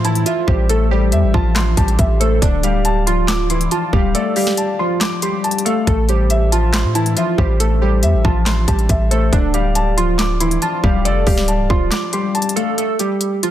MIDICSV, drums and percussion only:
0, 0, Header, 1, 2, 480
1, 0, Start_track
1, 0, Key_signature, 0, "minor"
1, 0, Tempo, 431655
1, 771, Time_signature, 4, 2, 24, 8
1, 15020, End_track
2, 0, Start_track
2, 0, Title_t, "Drums"
2, 51, Note_on_c, 9, 42, 85
2, 163, Note_off_c, 9, 42, 0
2, 171, Note_on_c, 9, 42, 50
2, 283, Note_off_c, 9, 42, 0
2, 290, Note_on_c, 9, 42, 73
2, 401, Note_off_c, 9, 42, 0
2, 531, Note_on_c, 9, 36, 109
2, 642, Note_off_c, 9, 36, 0
2, 773, Note_on_c, 9, 42, 85
2, 884, Note_off_c, 9, 42, 0
2, 1247, Note_on_c, 9, 42, 71
2, 1359, Note_off_c, 9, 42, 0
2, 1492, Note_on_c, 9, 36, 101
2, 1603, Note_off_c, 9, 36, 0
2, 1731, Note_on_c, 9, 38, 125
2, 1733, Note_on_c, 9, 42, 92
2, 1737, Note_on_c, 9, 39, 98
2, 1843, Note_off_c, 9, 38, 0
2, 1845, Note_off_c, 9, 42, 0
2, 1849, Note_off_c, 9, 39, 0
2, 1971, Note_on_c, 9, 36, 101
2, 1972, Note_on_c, 9, 42, 86
2, 2083, Note_off_c, 9, 36, 0
2, 2083, Note_off_c, 9, 42, 0
2, 2092, Note_on_c, 9, 42, 48
2, 2203, Note_off_c, 9, 42, 0
2, 2210, Note_on_c, 9, 42, 72
2, 2211, Note_on_c, 9, 36, 104
2, 2321, Note_off_c, 9, 42, 0
2, 2322, Note_off_c, 9, 36, 0
2, 2455, Note_on_c, 9, 42, 88
2, 2566, Note_off_c, 9, 42, 0
2, 2691, Note_on_c, 9, 36, 122
2, 2693, Note_on_c, 9, 42, 87
2, 2803, Note_off_c, 9, 36, 0
2, 2804, Note_off_c, 9, 42, 0
2, 2930, Note_on_c, 9, 42, 68
2, 3041, Note_off_c, 9, 42, 0
2, 3167, Note_on_c, 9, 42, 71
2, 3279, Note_off_c, 9, 42, 0
2, 3415, Note_on_c, 9, 42, 92
2, 3527, Note_off_c, 9, 42, 0
2, 3651, Note_on_c, 9, 38, 117
2, 3653, Note_on_c, 9, 42, 94
2, 3657, Note_on_c, 9, 39, 99
2, 3762, Note_off_c, 9, 38, 0
2, 3764, Note_off_c, 9, 42, 0
2, 3768, Note_off_c, 9, 39, 0
2, 3891, Note_on_c, 9, 42, 88
2, 4003, Note_off_c, 9, 42, 0
2, 4012, Note_on_c, 9, 42, 49
2, 4123, Note_off_c, 9, 42, 0
2, 4129, Note_on_c, 9, 42, 73
2, 4240, Note_off_c, 9, 42, 0
2, 4370, Note_on_c, 9, 36, 111
2, 4482, Note_off_c, 9, 36, 0
2, 4612, Note_on_c, 9, 42, 86
2, 4724, Note_off_c, 9, 42, 0
2, 4848, Note_on_c, 9, 46, 76
2, 4959, Note_off_c, 9, 46, 0
2, 4970, Note_on_c, 9, 38, 67
2, 5081, Note_off_c, 9, 38, 0
2, 5087, Note_on_c, 9, 42, 71
2, 5198, Note_off_c, 9, 42, 0
2, 5570, Note_on_c, 9, 38, 120
2, 5572, Note_on_c, 9, 42, 88
2, 5576, Note_on_c, 9, 39, 96
2, 5681, Note_off_c, 9, 38, 0
2, 5683, Note_off_c, 9, 42, 0
2, 5687, Note_off_c, 9, 39, 0
2, 5808, Note_on_c, 9, 42, 82
2, 5919, Note_off_c, 9, 42, 0
2, 6051, Note_on_c, 9, 42, 45
2, 6130, Note_off_c, 9, 42, 0
2, 6130, Note_on_c, 9, 42, 58
2, 6210, Note_off_c, 9, 42, 0
2, 6210, Note_on_c, 9, 42, 73
2, 6294, Note_off_c, 9, 42, 0
2, 6294, Note_on_c, 9, 42, 86
2, 6405, Note_off_c, 9, 42, 0
2, 6530, Note_on_c, 9, 36, 120
2, 6532, Note_on_c, 9, 42, 88
2, 6642, Note_off_c, 9, 36, 0
2, 6643, Note_off_c, 9, 42, 0
2, 6768, Note_on_c, 9, 42, 68
2, 6879, Note_off_c, 9, 42, 0
2, 7006, Note_on_c, 9, 42, 69
2, 7117, Note_off_c, 9, 42, 0
2, 7254, Note_on_c, 9, 42, 89
2, 7366, Note_off_c, 9, 42, 0
2, 7490, Note_on_c, 9, 38, 119
2, 7492, Note_on_c, 9, 42, 90
2, 7496, Note_on_c, 9, 39, 96
2, 7601, Note_off_c, 9, 38, 0
2, 7603, Note_off_c, 9, 42, 0
2, 7607, Note_off_c, 9, 39, 0
2, 7730, Note_on_c, 9, 42, 85
2, 7842, Note_off_c, 9, 42, 0
2, 7851, Note_on_c, 9, 42, 50
2, 7962, Note_off_c, 9, 42, 0
2, 7969, Note_on_c, 9, 42, 72
2, 8080, Note_off_c, 9, 42, 0
2, 8210, Note_on_c, 9, 36, 107
2, 8321, Note_off_c, 9, 36, 0
2, 8453, Note_on_c, 9, 42, 87
2, 8564, Note_off_c, 9, 42, 0
2, 8927, Note_on_c, 9, 42, 71
2, 9038, Note_off_c, 9, 42, 0
2, 9171, Note_on_c, 9, 36, 102
2, 9282, Note_off_c, 9, 36, 0
2, 9410, Note_on_c, 9, 38, 119
2, 9412, Note_on_c, 9, 42, 89
2, 9416, Note_on_c, 9, 39, 94
2, 9521, Note_off_c, 9, 38, 0
2, 9523, Note_off_c, 9, 42, 0
2, 9527, Note_off_c, 9, 39, 0
2, 9650, Note_on_c, 9, 36, 106
2, 9651, Note_on_c, 9, 42, 83
2, 9762, Note_off_c, 9, 36, 0
2, 9762, Note_off_c, 9, 42, 0
2, 9771, Note_on_c, 9, 42, 48
2, 9882, Note_off_c, 9, 42, 0
2, 9889, Note_on_c, 9, 42, 73
2, 9890, Note_on_c, 9, 36, 102
2, 10000, Note_off_c, 9, 42, 0
2, 10001, Note_off_c, 9, 36, 0
2, 10134, Note_on_c, 9, 42, 87
2, 10245, Note_off_c, 9, 42, 0
2, 10370, Note_on_c, 9, 36, 116
2, 10372, Note_on_c, 9, 42, 85
2, 10481, Note_off_c, 9, 36, 0
2, 10483, Note_off_c, 9, 42, 0
2, 10608, Note_on_c, 9, 42, 71
2, 10719, Note_off_c, 9, 42, 0
2, 10846, Note_on_c, 9, 42, 72
2, 10957, Note_off_c, 9, 42, 0
2, 11095, Note_on_c, 9, 42, 92
2, 11206, Note_off_c, 9, 42, 0
2, 11330, Note_on_c, 9, 38, 118
2, 11332, Note_on_c, 9, 42, 90
2, 11336, Note_on_c, 9, 39, 95
2, 11441, Note_off_c, 9, 38, 0
2, 11443, Note_off_c, 9, 42, 0
2, 11447, Note_off_c, 9, 39, 0
2, 11570, Note_on_c, 9, 42, 83
2, 11681, Note_off_c, 9, 42, 0
2, 11690, Note_on_c, 9, 42, 48
2, 11801, Note_off_c, 9, 42, 0
2, 11809, Note_on_c, 9, 42, 73
2, 11920, Note_off_c, 9, 42, 0
2, 12050, Note_on_c, 9, 36, 110
2, 12161, Note_off_c, 9, 36, 0
2, 12292, Note_on_c, 9, 42, 85
2, 12403, Note_off_c, 9, 42, 0
2, 12528, Note_on_c, 9, 46, 76
2, 12530, Note_on_c, 9, 36, 109
2, 12640, Note_off_c, 9, 46, 0
2, 12641, Note_off_c, 9, 36, 0
2, 12650, Note_on_c, 9, 38, 67
2, 12761, Note_off_c, 9, 38, 0
2, 12766, Note_on_c, 9, 42, 72
2, 12877, Note_off_c, 9, 42, 0
2, 13011, Note_on_c, 9, 36, 101
2, 13122, Note_off_c, 9, 36, 0
2, 13250, Note_on_c, 9, 38, 119
2, 13252, Note_on_c, 9, 42, 88
2, 13256, Note_on_c, 9, 39, 95
2, 13361, Note_off_c, 9, 38, 0
2, 13363, Note_off_c, 9, 42, 0
2, 13367, Note_off_c, 9, 39, 0
2, 13487, Note_on_c, 9, 42, 86
2, 13599, Note_off_c, 9, 42, 0
2, 13731, Note_on_c, 9, 42, 44
2, 13811, Note_off_c, 9, 42, 0
2, 13811, Note_on_c, 9, 42, 61
2, 13891, Note_off_c, 9, 42, 0
2, 13891, Note_on_c, 9, 42, 77
2, 13974, Note_off_c, 9, 42, 0
2, 13974, Note_on_c, 9, 42, 87
2, 14085, Note_off_c, 9, 42, 0
2, 14212, Note_on_c, 9, 42, 85
2, 14323, Note_off_c, 9, 42, 0
2, 14449, Note_on_c, 9, 42, 67
2, 14561, Note_off_c, 9, 42, 0
2, 14687, Note_on_c, 9, 42, 70
2, 14798, Note_off_c, 9, 42, 0
2, 14935, Note_on_c, 9, 42, 87
2, 15020, Note_off_c, 9, 42, 0
2, 15020, End_track
0, 0, End_of_file